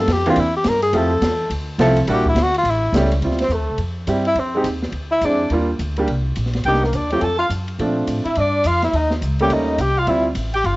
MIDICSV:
0, 0, Header, 1, 7, 480
1, 0, Start_track
1, 0, Key_signature, -1, "minor"
1, 0, Tempo, 285442
1, 1594, Time_signature, 4, 2, 24, 8
1, 18101, End_track
2, 0, Start_track
2, 0, Title_t, "Alto saxophone"
2, 0, Program_c, 0, 65
2, 5736, Note_on_c, 0, 72, 53
2, 5962, Note_on_c, 0, 69, 45
2, 5987, Note_off_c, 0, 72, 0
2, 6414, Note_off_c, 0, 69, 0
2, 7184, Note_on_c, 0, 76, 85
2, 7381, Note_on_c, 0, 72, 60
2, 7406, Note_off_c, 0, 76, 0
2, 7843, Note_off_c, 0, 72, 0
2, 8612, Note_on_c, 0, 76, 74
2, 8818, Note_on_c, 0, 74, 63
2, 8843, Note_off_c, 0, 76, 0
2, 9282, Note_off_c, 0, 74, 0
2, 11193, Note_on_c, 0, 79, 68
2, 11510, Note_on_c, 0, 70, 57
2, 11535, Note_off_c, 0, 79, 0
2, 11708, Note_on_c, 0, 74, 57
2, 11733, Note_off_c, 0, 70, 0
2, 11971, Note_off_c, 0, 74, 0
2, 11981, Note_on_c, 0, 79, 64
2, 12178, Note_on_c, 0, 81, 66
2, 12203, Note_off_c, 0, 79, 0
2, 12433, Note_off_c, 0, 81, 0
2, 12443, Note_on_c, 0, 77, 72
2, 12614, Note_off_c, 0, 77, 0
2, 13913, Note_on_c, 0, 76, 61
2, 14118, Note_on_c, 0, 74, 61
2, 14144, Note_off_c, 0, 76, 0
2, 14578, Note_on_c, 0, 77, 71
2, 14603, Note_off_c, 0, 74, 0
2, 14863, Note_off_c, 0, 77, 0
2, 14879, Note_on_c, 0, 76, 68
2, 15084, Note_on_c, 0, 75, 62
2, 15109, Note_off_c, 0, 76, 0
2, 15356, Note_off_c, 0, 75, 0
2, 15845, Note_on_c, 0, 79, 69
2, 16025, Note_on_c, 0, 75, 58
2, 16051, Note_off_c, 0, 79, 0
2, 16482, Note_on_c, 0, 79, 76
2, 16507, Note_off_c, 0, 75, 0
2, 16777, Note_on_c, 0, 77, 78
2, 16802, Note_off_c, 0, 79, 0
2, 16940, Note_on_c, 0, 76, 69
2, 16966, Note_off_c, 0, 77, 0
2, 17246, Note_off_c, 0, 76, 0
2, 17721, Note_on_c, 0, 79, 74
2, 17917, Note_on_c, 0, 77, 67
2, 17942, Note_off_c, 0, 79, 0
2, 18101, Note_off_c, 0, 77, 0
2, 18101, End_track
3, 0, Start_track
3, 0, Title_t, "Tenor saxophone"
3, 0, Program_c, 1, 66
3, 0, Note_on_c, 1, 69, 92
3, 201, Note_on_c, 1, 67, 88
3, 226, Note_off_c, 1, 69, 0
3, 477, Note_off_c, 1, 67, 0
3, 493, Note_on_c, 1, 65, 88
3, 676, Note_on_c, 1, 64, 90
3, 701, Note_off_c, 1, 65, 0
3, 942, Note_off_c, 1, 64, 0
3, 952, Note_on_c, 1, 67, 95
3, 1147, Note_on_c, 1, 70, 108
3, 1172, Note_off_c, 1, 67, 0
3, 1381, Note_off_c, 1, 70, 0
3, 1392, Note_on_c, 1, 68, 97
3, 1640, Note_on_c, 1, 69, 95
3, 1666, Note_off_c, 1, 68, 0
3, 2575, Note_off_c, 1, 69, 0
3, 3581, Note_on_c, 1, 67, 90
3, 3825, Note_off_c, 1, 67, 0
3, 3849, Note_on_c, 1, 64, 94
3, 4079, Note_on_c, 1, 66, 104
3, 4104, Note_off_c, 1, 64, 0
3, 4332, Note_off_c, 1, 66, 0
3, 4340, Note_on_c, 1, 65, 103
3, 4547, Note_on_c, 1, 64, 91
3, 4572, Note_off_c, 1, 65, 0
3, 4987, Note_off_c, 1, 64, 0
3, 5769, Note_on_c, 1, 60, 63
3, 5927, Note_on_c, 1, 57, 55
3, 5953, Note_off_c, 1, 60, 0
3, 6396, Note_off_c, 1, 57, 0
3, 7177, Note_on_c, 1, 64, 90
3, 7389, Note_on_c, 1, 60, 68
3, 7414, Note_off_c, 1, 64, 0
3, 7847, Note_off_c, 1, 60, 0
3, 8600, Note_on_c, 1, 64, 96
3, 8841, Note_on_c, 1, 62, 78
3, 8867, Note_off_c, 1, 64, 0
3, 9294, Note_off_c, 1, 62, 0
3, 11234, Note_on_c, 1, 67, 76
3, 11510, Note_on_c, 1, 58, 61
3, 11535, Note_off_c, 1, 67, 0
3, 11693, Note_on_c, 1, 62, 70
3, 11719, Note_off_c, 1, 58, 0
3, 11963, Note_off_c, 1, 62, 0
3, 11974, Note_on_c, 1, 67, 76
3, 12125, Note_on_c, 1, 69, 79
3, 12150, Note_off_c, 1, 67, 0
3, 12413, Note_off_c, 1, 69, 0
3, 12423, Note_on_c, 1, 65, 89
3, 12539, Note_off_c, 1, 65, 0
3, 13868, Note_on_c, 1, 64, 77
3, 14088, Note_on_c, 1, 62, 77
3, 14113, Note_off_c, 1, 64, 0
3, 14579, Note_on_c, 1, 65, 93
3, 14605, Note_off_c, 1, 62, 0
3, 14854, Note_off_c, 1, 65, 0
3, 14864, Note_on_c, 1, 64, 77
3, 15065, Note_on_c, 1, 63, 73
3, 15091, Note_off_c, 1, 64, 0
3, 15347, Note_off_c, 1, 63, 0
3, 15841, Note_on_c, 1, 67, 91
3, 16040, Note_on_c, 1, 63, 70
3, 16066, Note_off_c, 1, 67, 0
3, 16507, Note_on_c, 1, 67, 88
3, 16533, Note_off_c, 1, 63, 0
3, 16805, Note_on_c, 1, 65, 83
3, 16830, Note_off_c, 1, 67, 0
3, 16982, Note_on_c, 1, 64, 76
3, 17007, Note_off_c, 1, 65, 0
3, 17266, Note_off_c, 1, 64, 0
3, 17751, Note_on_c, 1, 67, 100
3, 17930, Note_on_c, 1, 65, 83
3, 17956, Note_off_c, 1, 67, 0
3, 18101, Note_off_c, 1, 65, 0
3, 18101, End_track
4, 0, Start_track
4, 0, Title_t, "Grand piano"
4, 0, Program_c, 2, 0
4, 440, Note_on_c, 2, 52, 84
4, 447, Note_on_c, 2, 58, 74
4, 448, Note_on_c, 2, 60, 72
4, 458, Note_on_c, 2, 67, 84
4, 461, Note_on_c, 2, 62, 72
4, 611, Note_off_c, 2, 52, 0
4, 614, Note_off_c, 2, 58, 0
4, 615, Note_off_c, 2, 60, 0
4, 620, Note_off_c, 2, 67, 0
4, 621, Note_off_c, 2, 62, 0
4, 1570, Note_on_c, 2, 53, 63
4, 1571, Note_on_c, 2, 57, 60
4, 1589, Note_on_c, 2, 60, 60
4, 1592, Note_on_c, 2, 64, 64
4, 1593, Note_on_c, 2, 67, 66
4, 1850, Note_off_c, 2, 53, 0
4, 1851, Note_off_c, 2, 57, 0
4, 1860, Note_off_c, 2, 60, 0
4, 1861, Note_off_c, 2, 64, 0
4, 1862, Note_off_c, 2, 67, 0
4, 3019, Note_on_c, 2, 53, 82
4, 3024, Note_on_c, 2, 60, 77
4, 3026, Note_on_c, 2, 57, 72
4, 3039, Note_on_c, 2, 64, 80
4, 3043, Note_on_c, 2, 69, 96
4, 3293, Note_off_c, 2, 53, 0
4, 3295, Note_off_c, 2, 60, 0
4, 3296, Note_off_c, 2, 57, 0
4, 3303, Note_off_c, 2, 64, 0
4, 3305, Note_off_c, 2, 69, 0
4, 3497, Note_on_c, 2, 55, 68
4, 3510, Note_on_c, 2, 58, 58
4, 3510, Note_on_c, 2, 62, 58
4, 3517, Note_on_c, 2, 66, 77
4, 3527, Note_on_c, 2, 64, 60
4, 3771, Note_off_c, 2, 55, 0
4, 3778, Note_off_c, 2, 58, 0
4, 3778, Note_off_c, 2, 62, 0
4, 3781, Note_off_c, 2, 66, 0
4, 3786, Note_off_c, 2, 64, 0
4, 4951, Note_on_c, 2, 55, 69
4, 4962, Note_on_c, 2, 57, 61
4, 4964, Note_on_c, 2, 64, 60
4, 4966, Note_on_c, 2, 61, 65
4, 4988, Note_on_c, 2, 67, 71
4, 5217, Note_off_c, 2, 55, 0
4, 5223, Note_off_c, 2, 57, 0
4, 5224, Note_off_c, 2, 64, 0
4, 5225, Note_off_c, 2, 61, 0
4, 5236, Note_off_c, 2, 67, 0
4, 5438, Note_on_c, 2, 55, 45
4, 5446, Note_on_c, 2, 60, 40
4, 5461, Note_on_c, 2, 64, 41
4, 5462, Note_on_c, 2, 65, 50
4, 5701, Note_off_c, 2, 55, 0
4, 5705, Note_off_c, 2, 60, 0
4, 5712, Note_off_c, 2, 64, 0
4, 5712, Note_off_c, 2, 65, 0
4, 6852, Note_on_c, 2, 55, 60
4, 6861, Note_on_c, 2, 60, 57
4, 6865, Note_on_c, 2, 64, 60
4, 6877, Note_on_c, 2, 67, 68
4, 7127, Note_off_c, 2, 55, 0
4, 7132, Note_off_c, 2, 60, 0
4, 7134, Note_off_c, 2, 64, 0
4, 7140, Note_off_c, 2, 67, 0
4, 7646, Note_on_c, 2, 56, 64
4, 7663, Note_on_c, 2, 60, 59
4, 7675, Note_on_c, 2, 63, 56
4, 7684, Note_on_c, 2, 67, 73
4, 7809, Note_off_c, 2, 56, 0
4, 7817, Note_off_c, 2, 60, 0
4, 7823, Note_off_c, 2, 63, 0
4, 7828, Note_off_c, 2, 67, 0
4, 8813, Note_on_c, 2, 56, 50
4, 8819, Note_on_c, 2, 62, 47
4, 8826, Note_on_c, 2, 60, 49
4, 8835, Note_on_c, 2, 64, 58
4, 9068, Note_off_c, 2, 56, 0
4, 9071, Note_off_c, 2, 62, 0
4, 9075, Note_off_c, 2, 60, 0
4, 9079, Note_off_c, 2, 64, 0
4, 9276, Note_on_c, 2, 55, 62
4, 9284, Note_on_c, 2, 58, 59
4, 9301, Note_on_c, 2, 62, 59
4, 9304, Note_on_c, 2, 65, 63
4, 9540, Note_off_c, 2, 55, 0
4, 9544, Note_off_c, 2, 58, 0
4, 9552, Note_off_c, 2, 62, 0
4, 9554, Note_off_c, 2, 65, 0
4, 10052, Note_on_c, 2, 55, 57
4, 10056, Note_on_c, 2, 58, 55
4, 10072, Note_on_c, 2, 62, 53
4, 10081, Note_on_c, 2, 67, 67
4, 10212, Note_off_c, 2, 55, 0
4, 10214, Note_off_c, 2, 58, 0
4, 10222, Note_off_c, 2, 62, 0
4, 10226, Note_off_c, 2, 67, 0
4, 11202, Note_on_c, 2, 55, 55
4, 11210, Note_on_c, 2, 58, 53
4, 11216, Note_on_c, 2, 62, 49
4, 11229, Note_on_c, 2, 63, 57
4, 11463, Note_off_c, 2, 55, 0
4, 11467, Note_off_c, 2, 58, 0
4, 11471, Note_off_c, 2, 62, 0
4, 11477, Note_off_c, 2, 63, 0
4, 11972, Note_on_c, 2, 54, 56
4, 11981, Note_on_c, 2, 57, 53
4, 11983, Note_on_c, 2, 60, 51
4, 11990, Note_on_c, 2, 65, 58
4, 12133, Note_off_c, 2, 54, 0
4, 12137, Note_off_c, 2, 57, 0
4, 12138, Note_off_c, 2, 60, 0
4, 12142, Note_off_c, 2, 65, 0
4, 13111, Note_on_c, 2, 53, 52
4, 13121, Note_on_c, 2, 57, 53
4, 13127, Note_on_c, 2, 60, 50
4, 13133, Note_on_c, 2, 62, 64
4, 13829, Note_off_c, 2, 53, 0
4, 13834, Note_off_c, 2, 57, 0
4, 13837, Note_off_c, 2, 60, 0
4, 13840, Note_off_c, 2, 62, 0
4, 15816, Note_on_c, 2, 57, 61
4, 15818, Note_on_c, 2, 55, 66
4, 15825, Note_on_c, 2, 58, 65
4, 15843, Note_on_c, 2, 61, 72
4, 16439, Note_off_c, 2, 57, 0
4, 16440, Note_off_c, 2, 55, 0
4, 16444, Note_off_c, 2, 58, 0
4, 16453, Note_off_c, 2, 61, 0
4, 16939, Note_on_c, 2, 55, 58
4, 16948, Note_on_c, 2, 60, 52
4, 16950, Note_on_c, 2, 64, 55
4, 16964, Note_on_c, 2, 65, 65
4, 17215, Note_off_c, 2, 55, 0
4, 17220, Note_off_c, 2, 60, 0
4, 17220, Note_off_c, 2, 64, 0
4, 17228, Note_off_c, 2, 65, 0
4, 18101, End_track
5, 0, Start_track
5, 0, Title_t, "Upright bass"
5, 0, Program_c, 3, 32
5, 124, Note_on_c, 3, 41, 101
5, 605, Note_off_c, 3, 41, 0
5, 612, Note_on_c, 3, 40, 84
5, 1085, Note_off_c, 3, 40, 0
5, 1095, Note_on_c, 3, 43, 89
5, 1553, Note_off_c, 3, 43, 0
5, 1563, Note_on_c, 3, 41, 92
5, 2029, Note_off_c, 3, 41, 0
5, 2039, Note_on_c, 3, 40, 96
5, 2510, Note_off_c, 3, 40, 0
5, 2520, Note_on_c, 3, 38, 89
5, 2991, Note_off_c, 3, 38, 0
5, 3001, Note_on_c, 3, 36, 93
5, 3460, Note_off_c, 3, 36, 0
5, 3470, Note_on_c, 3, 34, 85
5, 3942, Note_off_c, 3, 34, 0
5, 3952, Note_on_c, 3, 38, 100
5, 4424, Note_off_c, 3, 38, 0
5, 4434, Note_on_c, 3, 33, 84
5, 4911, Note_off_c, 3, 33, 0
5, 4921, Note_on_c, 3, 37, 102
5, 5399, Note_off_c, 3, 37, 0
5, 5412, Note_on_c, 3, 38, 73
5, 5851, Note_off_c, 3, 38, 0
5, 5861, Note_on_c, 3, 40, 79
5, 6027, Note_off_c, 3, 40, 0
5, 6027, Note_on_c, 3, 38, 51
5, 6196, Note_off_c, 3, 38, 0
5, 6206, Note_on_c, 3, 36, 56
5, 6338, Note_off_c, 3, 36, 0
5, 6348, Note_on_c, 3, 41, 74
5, 6832, Note_off_c, 3, 41, 0
5, 6846, Note_on_c, 3, 43, 78
5, 7305, Note_off_c, 3, 43, 0
5, 7315, Note_on_c, 3, 41, 69
5, 7792, Note_off_c, 3, 41, 0
5, 7802, Note_on_c, 3, 39, 91
5, 8261, Note_off_c, 3, 39, 0
5, 8271, Note_on_c, 3, 38, 75
5, 8754, Note_off_c, 3, 38, 0
5, 8766, Note_on_c, 3, 41, 85
5, 9241, Note_off_c, 3, 41, 0
5, 9248, Note_on_c, 3, 39, 74
5, 9723, Note_off_c, 3, 39, 0
5, 9736, Note_on_c, 3, 38, 88
5, 10207, Note_off_c, 3, 38, 0
5, 10228, Note_on_c, 3, 36, 78
5, 10693, Note_off_c, 3, 36, 0
5, 10705, Note_on_c, 3, 34, 83
5, 11172, Note_off_c, 3, 34, 0
5, 11181, Note_on_c, 3, 36, 77
5, 11640, Note_off_c, 3, 36, 0
5, 11650, Note_on_c, 3, 39, 88
5, 12120, Note_off_c, 3, 39, 0
5, 12130, Note_on_c, 3, 41, 68
5, 12593, Note_off_c, 3, 41, 0
5, 12603, Note_on_c, 3, 42, 80
5, 13081, Note_off_c, 3, 42, 0
5, 13095, Note_on_c, 3, 46, 74
5, 13560, Note_off_c, 3, 46, 0
5, 13570, Note_on_c, 3, 45, 80
5, 13857, Note_off_c, 3, 45, 0
5, 14071, Note_on_c, 3, 43, 74
5, 14527, Note_off_c, 3, 43, 0
5, 14537, Note_on_c, 3, 41, 77
5, 15002, Note_off_c, 3, 41, 0
5, 15012, Note_on_c, 3, 39, 73
5, 15487, Note_off_c, 3, 39, 0
5, 15495, Note_on_c, 3, 37, 82
5, 15957, Note_off_c, 3, 37, 0
5, 15967, Note_on_c, 3, 39, 76
5, 16431, Note_off_c, 3, 39, 0
5, 16441, Note_on_c, 3, 36, 81
5, 16923, Note_off_c, 3, 36, 0
5, 16930, Note_on_c, 3, 38, 78
5, 17390, Note_off_c, 3, 38, 0
5, 17400, Note_on_c, 3, 33, 88
5, 17882, Note_off_c, 3, 33, 0
5, 17893, Note_on_c, 3, 31, 75
5, 18101, Note_off_c, 3, 31, 0
5, 18101, End_track
6, 0, Start_track
6, 0, Title_t, "Muted upright bass strokes"
6, 13872, Note_on_c, 9, 29, 37
6, 14040, Note_off_c, 9, 29, 0
6, 18101, End_track
7, 0, Start_track
7, 0, Title_t, "Drums"
7, 131, Note_on_c, 9, 44, 57
7, 131, Note_on_c, 9, 51, 71
7, 136, Note_on_c, 9, 38, 81
7, 299, Note_off_c, 9, 44, 0
7, 299, Note_off_c, 9, 51, 0
7, 305, Note_off_c, 9, 38, 0
7, 435, Note_on_c, 9, 51, 48
7, 603, Note_off_c, 9, 51, 0
7, 603, Note_on_c, 9, 51, 69
7, 771, Note_off_c, 9, 51, 0
7, 1080, Note_on_c, 9, 44, 67
7, 1080, Note_on_c, 9, 51, 75
7, 1085, Note_on_c, 9, 38, 78
7, 1248, Note_off_c, 9, 44, 0
7, 1248, Note_off_c, 9, 51, 0
7, 1253, Note_off_c, 9, 38, 0
7, 1381, Note_on_c, 9, 51, 54
7, 1549, Note_off_c, 9, 51, 0
7, 1562, Note_on_c, 9, 51, 63
7, 1730, Note_off_c, 9, 51, 0
7, 2049, Note_on_c, 9, 44, 69
7, 2049, Note_on_c, 9, 51, 84
7, 2054, Note_on_c, 9, 38, 84
7, 2217, Note_off_c, 9, 44, 0
7, 2217, Note_off_c, 9, 51, 0
7, 2222, Note_off_c, 9, 38, 0
7, 2530, Note_on_c, 9, 51, 68
7, 2698, Note_off_c, 9, 51, 0
7, 3010, Note_on_c, 9, 44, 57
7, 3010, Note_on_c, 9, 51, 84
7, 3015, Note_on_c, 9, 38, 81
7, 3178, Note_off_c, 9, 44, 0
7, 3178, Note_off_c, 9, 51, 0
7, 3183, Note_off_c, 9, 38, 0
7, 3304, Note_on_c, 9, 51, 52
7, 3472, Note_off_c, 9, 51, 0
7, 3487, Note_on_c, 9, 51, 68
7, 3655, Note_off_c, 9, 51, 0
7, 3788, Note_on_c, 9, 36, 69
7, 3956, Note_off_c, 9, 36, 0
7, 3965, Note_on_c, 9, 44, 62
7, 3965, Note_on_c, 9, 51, 81
7, 3970, Note_on_c, 9, 38, 85
7, 4133, Note_off_c, 9, 44, 0
7, 4133, Note_off_c, 9, 51, 0
7, 4138, Note_off_c, 9, 38, 0
7, 4277, Note_on_c, 9, 51, 52
7, 4446, Note_off_c, 9, 51, 0
7, 4456, Note_on_c, 9, 51, 65
7, 4624, Note_off_c, 9, 51, 0
7, 4946, Note_on_c, 9, 44, 72
7, 4946, Note_on_c, 9, 51, 82
7, 4951, Note_on_c, 9, 38, 79
7, 5114, Note_off_c, 9, 44, 0
7, 5114, Note_off_c, 9, 51, 0
7, 5119, Note_off_c, 9, 38, 0
7, 5241, Note_on_c, 9, 51, 50
7, 5409, Note_off_c, 9, 51, 0
7, 5417, Note_on_c, 9, 51, 49
7, 5566, Note_on_c, 9, 38, 27
7, 5585, Note_off_c, 9, 51, 0
7, 5694, Note_on_c, 9, 51, 60
7, 5729, Note_off_c, 9, 38, 0
7, 5729, Note_on_c, 9, 38, 37
7, 5862, Note_off_c, 9, 51, 0
7, 5880, Note_on_c, 9, 44, 51
7, 5897, Note_off_c, 9, 38, 0
7, 6048, Note_off_c, 9, 44, 0
7, 6353, Note_on_c, 9, 51, 53
7, 6521, Note_off_c, 9, 51, 0
7, 6845, Note_on_c, 9, 44, 52
7, 6845, Note_on_c, 9, 51, 64
7, 7013, Note_off_c, 9, 44, 0
7, 7013, Note_off_c, 9, 51, 0
7, 7146, Note_on_c, 9, 51, 38
7, 7314, Note_off_c, 9, 51, 0
7, 7324, Note_on_c, 9, 51, 51
7, 7492, Note_off_c, 9, 51, 0
7, 7802, Note_on_c, 9, 44, 60
7, 7802, Note_on_c, 9, 51, 64
7, 7970, Note_off_c, 9, 44, 0
7, 7970, Note_off_c, 9, 51, 0
7, 8113, Note_on_c, 9, 38, 41
7, 8278, Note_on_c, 9, 51, 52
7, 8281, Note_off_c, 9, 38, 0
7, 8446, Note_off_c, 9, 51, 0
7, 8766, Note_on_c, 9, 44, 51
7, 8766, Note_on_c, 9, 51, 59
7, 8934, Note_off_c, 9, 44, 0
7, 8934, Note_off_c, 9, 51, 0
7, 9246, Note_on_c, 9, 51, 50
7, 9414, Note_off_c, 9, 51, 0
7, 9740, Note_on_c, 9, 44, 62
7, 9740, Note_on_c, 9, 51, 60
7, 9908, Note_off_c, 9, 44, 0
7, 9908, Note_off_c, 9, 51, 0
7, 10030, Note_on_c, 9, 51, 41
7, 10198, Note_off_c, 9, 51, 0
7, 10216, Note_on_c, 9, 51, 54
7, 10384, Note_off_c, 9, 51, 0
7, 10688, Note_on_c, 9, 44, 51
7, 10688, Note_on_c, 9, 51, 62
7, 10856, Note_off_c, 9, 44, 0
7, 10856, Note_off_c, 9, 51, 0
7, 10858, Note_on_c, 9, 38, 26
7, 10986, Note_on_c, 9, 51, 41
7, 11012, Note_off_c, 9, 38, 0
7, 11012, Note_on_c, 9, 38, 38
7, 11154, Note_off_c, 9, 51, 0
7, 11157, Note_on_c, 9, 51, 51
7, 11180, Note_off_c, 9, 38, 0
7, 11326, Note_off_c, 9, 51, 0
7, 11335, Note_on_c, 9, 38, 29
7, 11498, Note_off_c, 9, 38, 0
7, 11498, Note_on_c, 9, 38, 39
7, 11651, Note_on_c, 9, 44, 49
7, 11651, Note_on_c, 9, 51, 64
7, 11666, Note_off_c, 9, 38, 0
7, 11819, Note_off_c, 9, 44, 0
7, 11819, Note_off_c, 9, 51, 0
7, 11945, Note_on_c, 9, 51, 41
7, 12113, Note_off_c, 9, 51, 0
7, 12127, Note_on_c, 9, 51, 51
7, 12295, Note_off_c, 9, 51, 0
7, 12615, Note_on_c, 9, 44, 64
7, 12615, Note_on_c, 9, 51, 56
7, 12783, Note_off_c, 9, 44, 0
7, 12783, Note_off_c, 9, 51, 0
7, 12910, Note_on_c, 9, 51, 38
7, 13078, Note_off_c, 9, 51, 0
7, 13103, Note_on_c, 9, 51, 52
7, 13272, Note_off_c, 9, 51, 0
7, 13575, Note_on_c, 9, 44, 60
7, 13575, Note_on_c, 9, 51, 66
7, 13743, Note_off_c, 9, 44, 0
7, 13743, Note_off_c, 9, 51, 0
7, 13877, Note_on_c, 9, 51, 39
7, 14045, Note_off_c, 9, 51, 0
7, 14045, Note_on_c, 9, 51, 55
7, 14213, Note_off_c, 9, 51, 0
7, 14527, Note_on_c, 9, 44, 54
7, 14527, Note_on_c, 9, 51, 71
7, 14695, Note_off_c, 9, 44, 0
7, 14695, Note_off_c, 9, 51, 0
7, 14835, Note_on_c, 9, 51, 42
7, 14840, Note_on_c, 9, 38, 38
7, 15003, Note_off_c, 9, 51, 0
7, 15008, Note_off_c, 9, 38, 0
7, 15022, Note_on_c, 9, 51, 53
7, 15190, Note_off_c, 9, 51, 0
7, 15311, Note_on_c, 9, 38, 45
7, 15479, Note_off_c, 9, 38, 0
7, 15502, Note_on_c, 9, 44, 66
7, 15502, Note_on_c, 9, 51, 59
7, 15670, Note_off_c, 9, 44, 0
7, 15670, Note_off_c, 9, 51, 0
7, 15795, Note_on_c, 9, 51, 43
7, 15963, Note_off_c, 9, 51, 0
7, 15973, Note_on_c, 9, 51, 58
7, 16141, Note_off_c, 9, 51, 0
7, 16450, Note_on_c, 9, 44, 46
7, 16450, Note_on_c, 9, 51, 59
7, 16618, Note_off_c, 9, 44, 0
7, 16618, Note_off_c, 9, 51, 0
7, 16930, Note_on_c, 9, 51, 52
7, 17098, Note_off_c, 9, 51, 0
7, 17401, Note_on_c, 9, 44, 48
7, 17401, Note_on_c, 9, 51, 72
7, 17570, Note_off_c, 9, 44, 0
7, 17570, Note_off_c, 9, 51, 0
7, 17714, Note_on_c, 9, 51, 44
7, 17882, Note_off_c, 9, 51, 0
7, 17894, Note_on_c, 9, 51, 52
7, 18062, Note_off_c, 9, 51, 0
7, 18101, End_track
0, 0, End_of_file